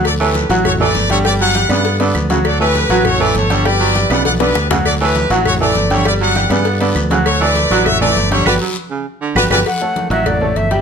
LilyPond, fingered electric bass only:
\new Staff \with { instrumentName = "Fingered electric bass" } { \clef bass \time 4/4 \key d \major \tempo 4 = 200 d,4. a,,4. g,,4~ | g,,4. g,4. d,4~ | d,4. a,,4. g,,4~ | g,,4. b,,4. d,4~ |
d,4. a,,4. g,,4~ | g,,4. g,4. d,4~ | d,4. a,,4. g,,4 | g,,8 r2 r8 g,,8 g,,8 |
r4. a,,4. g,,4 | }